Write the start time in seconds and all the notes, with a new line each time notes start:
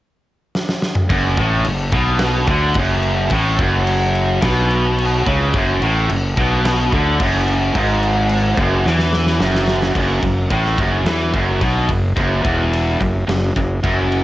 0.55 snare
0.69 snare
0.82 snare
0.95 mid tom
1.10 F#1 F#2, kick, crash
1.37 A1 A2, kick, crash
1.64 F#1 F#2, crash
1.92 B1 B2, kick, crash
2.19 snare, crash
2.47 D2 D3, kick, crash
2.74 F#1 F#2, kick, crash
3.03 crash
3.30 A1 A2, kick, crash
3.58 F#1 F#2, kick, crash
3.87 crash
4.15 crash
4.41 B1 B2, kick, snare, crash
4.71 crash
4.98 crash
5.26 C#2 C#3, kick, crash
5.53 F#1 F#2, kick, crash
5.80 A1 A2, crash
6.08 F#1 F#2, crash
6.37 B1 B2, kick, crash
6.65 snare, crash
6.92 D2 D3, kick, crash
7.19 F#1 F#2, kick, crash
7.34 snare
7.48 crash
7.75 G#1 G#2, kick, crash
8.03 crash
8.29 crash
8.57 F#1 F#2, kick, crash
8.86 E2 E3, snare
8.99 snare
9.13 snare
9.27 snare
9.39 F#1 F#2, snare
9.55 snare
9.68 snare
9.82 snare
9.95 F#1 F#2, kick, crash
10.23 F#1 F#2, kick, ride
10.50 A1 A2, kick, ride
10.65 snare
10.78 F#1 F#2, kick, ride
11.04 E2 E3, snare, ride
11.33 F#1 F#2, kick, ride
11.61 B1 B2, kick, ride
11.88 F#1 F#2, kick, ride
12.16 F#1 F#2, kick, ride
12.42 E1 E2, kick, ride
12.73 ride
13.00 F#1 F#2, kick, ride
13.27 F#1 F#2, snare, ride
13.56 F#1 F#2, kick, ride
13.83 F#1 F#2, kick, ride
14.12 ride